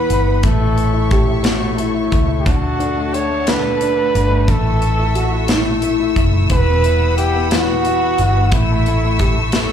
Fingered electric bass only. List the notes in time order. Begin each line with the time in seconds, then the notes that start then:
0.10 G1
0.44 A1
2.12 C#2
2.46 D2
4.15 G1
4.48 A1
6.16 F#1
6.50 E1
8.19 G1
8.52 A1